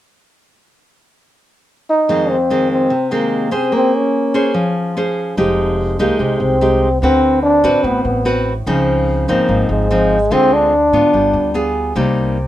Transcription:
1.90 2.32 D#4 medium
2.09 2.89 F2 medium
2.09 2.35 D#3 soft
2.09 2.35 G#3 soft
2.09 2.36 C4 soft
2.30 2.71 C4 medium
2.50 2.91 D#3 soft
2.50 2.91 G#3 soft
2.50 2.91 C4 medium
2.72 3.15 C4 medium
2.90 3.71 C3 medium
3.11 3.49 D#3 soft
3.11 3.49 G#3 medium
3.11 3.56 A#3 medium
3.11 3.49 C4 medium
3.51 3.74 C4 medium
3.51 4.31 C#4 medium
3.51 4.31 G#4 medium
3.51 4.31 C5 medium
3.72 4.53 A#3 medium
3.72 3.97 C4 medium
3.96 4.77 C#4 medium
4.34 4.93 C#4 medium
4.34 4.93 G#4 medium
4.34 4.93 C5 medium
4.54 5.35 F3 medium
4.97 5.34 C#4 medium
4.97 5.35 G#4 medium
4.97 5.35 C5 soft
5.37 5.95 F1 medium
5.37 6.18 F3 soft
5.37 5.96 G#3 soft
5.37 5.96 D#4 soft
5.37 5.96 G4 medium
5.99 6.09 C2 medium
5.99 6.58 G#3 medium
5.99 6.22 A#3 medium
5.99 6.58 D#4 medium
5.99 6.58 G4 medium
6.19 6.39 C2 medium
6.19 7.00 C3 soft
6.19 6.43 G#3 medium
6.40 6.98 C2 medium
6.40 7.01 C4 medium
6.61 6.88 G#3 soft
6.61 6.88 D#4 soft
6.61 6.88 G4 soft
7.01 7.60 D2 medium
7.01 7.83 D3 soft
7.01 7.40 C4 medium
7.01 7.61 C4 medium
7.01 7.61 F#4 medium
7.01 7.61 B4 medium
7.43 7.86 D4 medium
7.64 7.73 A1 medium
7.64 8.22 C4 medium
7.64 8.22 F#4 medium
7.64 8.23 B4 medium
7.84 8.03 A1 medium
7.84 8.65 A2 soft
7.84 8.05 B3 medium
8.05 8.63 A1 medium
8.05 8.43 B3 medium
8.25 8.52 C4 soft
8.25 8.52 F#4 medium
8.25 8.52 B4 medium
8.66 9.24 C#2 medium
8.66 9.47 C#3 medium
8.66 9.25 F3 medium
8.66 9.25 C4 medium
8.66 9.25 D#4 medium
9.28 9.38 G#1 medium
9.28 9.87 F3 soft
9.28 9.67 A#3 medium
9.28 9.87 C4 medium
9.28 9.87 D#4 medium
9.49 9.68 G#1 medium
9.49 10.29 G#2 soft
9.69 10.27 G#1 medium
9.69 10.34 G#3 medium
9.91 10.17 F3 medium
9.91 10.17 C4 soft
9.91 10.17 D#4 medium
10.30 10.89 D2 medium
10.30 11.11 D3 medium
10.30 10.72 G#3 medium
10.30 10.72 C4 soft
10.30 10.55 C4 loud
10.30 10.72 F4 medium
10.54 11.76 D4 medium
10.92 11.02 G#2 medium
10.92 11.51 B3 medium
10.92 11.52 F4 medium
11.13 11.33 G1 medium
11.13 11.94 G3 soft
11.33 11.91 D2 medium
11.54 11.92 B3 soft
11.54 11.92 F4 soft
11.54 11.93 G#4 medium
11.95 12.47 C2 medium
11.95 12.47 C3 medium
11.95 12.37 G3 medium
11.95 12.37 A#3 soft
11.95 12.37 D#4 medium

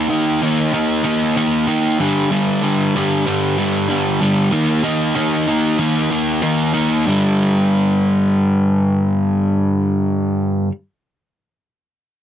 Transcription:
0.09 0.40 D#3 medium
0.09 0.41 A#3 medium
0.09 0.41 D#4 medium
0.41 0.71 D#3 medium
0.41 0.74 A#3 medium
0.41 0.73 D#4 medium
0.73 1.03 D#3 loud
0.73 1.04 A#3 loud
0.73 1.04 D#4 loud
1.04 1.35 D#3 medium
1.04 1.36 A#3 medium
1.04 1.36 D#4 loud
1.36 1.66 D#3 medium
1.36 1.67 A#3 medium
1.36 1.67 D#4 loud
1.67 1.97 D#3 medium
1.67 2.00 A#3 medium
1.67 1.98 D#4 loud
1.99 2.30 G2 loud
1.99 2.30 D3 loud
1.99 2.32 G3 loud
2.31 2.62 G2 medium
2.31 2.62 D3 loud
2.31 2.63 G3 medium
2.63 2.94 G2 medium
2.63 2.95 D3 medium
2.63 2.96 G3 medium
2.95 3.25 G2 medium
2.95 3.25 D3 loud
2.95 3.26 G3 medium
3.26 3.56 G2 loud
3.26 3.57 D3 loud
3.26 3.58 G3 loud
3.58 3.87 G2 loud
3.58 3.88 D3 medium
3.58 3.89 G3 loud
3.89 4.19 G2 medium
3.89 4.20 D3 medium
3.89 4.21 G3 medium
4.20 4.51 G2 medium
4.20 4.51 D3 medium
4.20 4.52 G3 loud
4.51 4.83 D#3 loud
4.51 4.83 A#3 loud
4.51 4.83 D#4 loud
4.84 5.14 D#3 medium
4.84 5.15 A#3 medium
4.84 5.15 D#4 loud
5.15 5.46 D#3 medium
5.15 5.47 A#3 medium
5.15 5.47 D#4 medium
5.47 5.77 D#3 medium
5.47 5.78 A#3 medium
5.47 5.79 D#4 loud
5.78 6.09 D#3 loud
5.78 6.09 A#3 loud
5.78 6.10 D#4 loud
6.10 6.41 D#3 medium
6.10 6.41 A#3 medium
6.10 6.41 D#4 medium
6.42 6.72 D#3 medium
6.42 6.72 A#3 loud
6.42 6.73 D#4 loud
6.73 7.04 D#3 medium
6.73 7.05 A#3 medium
6.73 7.05 D#4 loud
7.05 10.68 G2 medium
7.05 10.70 D3 medium
7.05 10.71 G3 medium

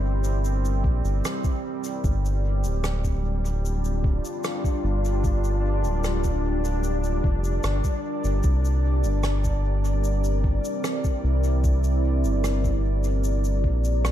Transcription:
0.00 0.86 G1 medium
0.00 14.12 G3 medium
0.00 4.60 C4 medium
0.00 2.04 E4 medium
0.00 2.04 A#4 medium
0.00 2.04 D5 medium
0.24 cabasa medium
0.45 cabasa medium
0.65 cabasa soft
0.84 1.02 A#1 medium
0.84 kick loud
1.04 1.22 G1 medium
1.04 cabasa soft
1.25 cross-stick medium
1.25 cabasa medium
1.44 kick loud
1.44 cabasa soft
1.84 cabasa medium
2.03 2.66 G1 loud
2.03 14.12 D4 medium
2.03 14.12 D5 medium
2.03 kick loud
2.03 cabasa medium
2.25 cabasa soft
2.54 9.71 D4 medium
2.64 4.21 D1 medium
2.64 cabasa medium
2.84 cross-stick medium
2.84 cabasa medium
2.95 14.12 D5 medium
2.99 8.44 F4 loud
3.04 kick medium
3.04 cabasa soft
3.45 cabasa medium
3.65 cabasa medium
3.84 14.12 A#4 medium
3.84 cabasa soft
4.04 kick loud
4.25 cabasa soft
4.44 cross-stick medium
4.44 cabasa medium
4.64 kick loud
4.64 cabasa soft
4.84 5.86 G1 medium
5.05 cabasa medium
5.24 kick loud
5.24 cabasa medium
5.44 cabasa soft
5.84 7.20 D1 loud
5.84 cabasa soft
6.04 cross-stick medium
6.04 cabasa medium
6.24 kick medium
6.24 cabasa soft
6.65 cabasa medium
6.83 cabasa medium
7.04 cabasa soft
7.24 7.59 F1 medium
7.24 kick loud
7.44 cabasa medium
7.63 7.82 G1 medium
7.63 cross-stick medium
7.63 cabasa medium
7.84 kick medium
7.84 cabasa medium
8.24 8.42 G1 loud
8.24 cabasa medium
8.43 9.06 C2 loud
8.43 kick loud
8.43 cabasa medium
8.65 cabasa medium
9.03 10.60 G1 loud
9.03 14.12 C4 medium
9.03 cabasa soft
9.23 cross-stick medium
9.23 cabasa medium
9.44 kick medium
9.44 cabasa soft
9.83 14.12 E4 medium
9.83 cabasa medium
10.04 cabasa medium
10.24 cabasa soft
10.44 kick loud
10.65 cabasa medium
10.84 cross-stick medium
10.84 cabasa medium
11.04 kick loud
11.04 cabasa soft
11.24 12.25 C2 medium
11.44 cabasa medium
11.64 kick loud
11.64 cabasa medium
11.84 cabasa soft
12.24 13.66 G1 medium
12.24 cabasa medium
12.44 cross-stick medium
12.44 cabasa medium
12.64 kick medium
12.64 cabasa soft
13.04 cabasa medium
13.24 cabasa medium
13.44 cabasa medium
13.64 14.12 A#1 medium
13.64 kick loud
13.84 cabasa medium
14.05 cross-stick medium
14.05 cabasa medium

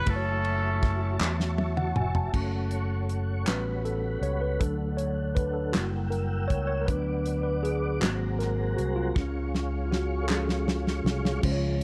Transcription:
0.00 2.29 C#6 medium
0.06 1.16 F#1 loud
0.06 2.29 A3 medium
0.06 1.17 C#4 medium
0.06 2.30 E4 medium
0.06 1.17 E4 medium
0.06 2.32 F#4 medium
0.06 2.31 F#4 medium
0.06 1.21 A4 loud
0.06 2.32 E5 medium
0.06 2.32 A5 medium
0.06 kick loud
0.06 ride medium
0.10 0.15 B4 medium
0.16 2.35 C#5 medium
0.44 ride soft
0.83 kick medium
0.83 snare soft
0.83 ride soft
1.20 1.92 E2 medium
1.20 snare medium
1.20 clap medium
1.40 snare medium
1.58 1.76 E5 medium
1.58 high tom medium
1.77 1.95 F#5 medium
1.77 mid tom medium
1.96 2.31 F1 medium
1.96 2.14 G#5 medium
1.96 mid tom medium
2.15 2.51 A5 medium
2.15 floor tom medium
2.33 3.43 F#1 medium
2.33 3.43 A3 soft
2.33 3.44 C#4 soft
2.33 3.44 F#4 soft
2.33 3.46 A4 medium
2.33 4.59 C#5 soft
2.33 9.12 F#5 soft
2.33 3.46 C#6 medium
2.33 kick loud
2.33 crash medium
2.71 closed hi-hat medium
3.09 closed hi-hat soft
3.47 4.19 A1 medium
3.47 3.98 G3 soft
3.47 4.60 G3 medium
3.47 3.98 B3 soft
3.47 3.98 C#4 soft
3.47 3.98 F#4 soft
3.47 3.87 B4 medium
3.47 4.60 B5 medium
3.47 snare loud
3.47 clap medium
3.47 closed hi-hat medium
3.85 4.24 A4 medium
3.85 closed hi-hat soft
4.21 4.57 C#2 medium
4.21 4.43 C#5 medium
4.21 closed hi-hat soft
4.41 4.50 B4 medium
4.60 5.76 D2 medium
4.60 5.70 F#3 medium
4.60 5.71 A3 soft
4.60 5.74 D4 soft
4.60 5.71 D4 medium
4.60 5.00 A4 medium
4.60 5.73 A4 medium
4.60 kick medium
4.60 closed hi-hat medium
4.97 5.37 C#5 medium
4.97 closed hi-hat medium
5.35 5.56 B4 medium
5.35 kick medium
5.35 closed hi-hat medium
5.53 5.72 A4 medium
5.72 6.46 F#1 medium
5.72 6.84 G3 soft
5.72 6.84 A#3 soft
5.72 6.85 E4 medium
5.72 5.90 F#4 medium
5.72 6.87 A#4 medium
5.72 6.87 G5 medium
5.72 6.87 E6 medium
5.72 snare loud
5.72 clap medium
5.72 closed hi-hat medium
6.10 6.51 A#4 medium
6.10 closed hi-hat soft
6.48 6.85 C#2 medium
6.48 6.66 C#5 medium
6.48 kick medium
6.48 closed hi-hat soft
6.67 6.81 C#5 medium
6.81 6.89 A#4 medium
6.86 7.98 D2 loud
6.86 7.38 F#3 medium
6.86 7.39 B3 soft
6.86 7.39 D4 medium
6.86 7.42 B4 medium
6.86 8.01 B4 medium
6.86 8.01 D5 medium
6.86 8.01 D6 medium
6.86 kick loud
6.86 closed hi-hat medium
7.26 closed hi-hat medium
7.43 7.62 B4 medium
7.63 8.03 G#4 medium
7.63 closed hi-hat medium
8.00 8.74 G#1 loud
8.00 9.12 F#3 soft
8.00 9.12 A#3 soft
8.00 9.12 C4 medium
8.00 8.40 F#4 medium
8.00 9.14 G#4 medium
8.00 9.15 C5 medium
8.00 9.15 A#5 medium
8.00 snare loud
8.00 clap medium
8.00 closed hi-hat medium
8.39 8.56 A#4 medium
8.39 snare soft
8.39 closed hi-hat soft
8.77 9.13 C2 medium
8.77 8.95 F#4 medium
8.77 closed hi-hat soft
8.96 9.84 F4 medium
9.15 11.02 C#2 loud
9.15 10.26 C#3 medium
9.15 10.26 G#3 soft
9.15 10.27 C#4 medium
9.15 11.41 G#4 medium
9.15 11.41 C#5 medium
9.15 11.41 F5 medium
9.15 11.41 C#6 medium
9.15 kick loud
9.15 snare soft
9.55 snare medium
9.85 9.92 F4 medium
9.92 10.24 F#4 medium
9.92 snare medium
10.23 10.30 A4 medium
10.29 10.64 F3 soft
10.29 10.64 G#3 soft
10.29 10.64 C#4 medium
10.29 10.69 G#4 medium
10.29 snare medium
10.29 clap medium
10.49 snare medium
10.67 11.03 F4 medium
10.67 snare medium
10.87 snare medium
11.04 11.40 C2 medium
11.04 snare loud
11.25 snare medium
11.42 11.84 C#2 medium
11.42 11.84 C#3 medium
11.42 11.84 F3 medium
11.42 11.84 G#3 medium
11.42 11.84 G#3 soft
11.42 11.84 C#4 medium
11.42 11.84 F4 medium
11.42 11.51 C5 medium
11.42 kick loud
11.42 crash medium
11.52 11.84 C#5 medium

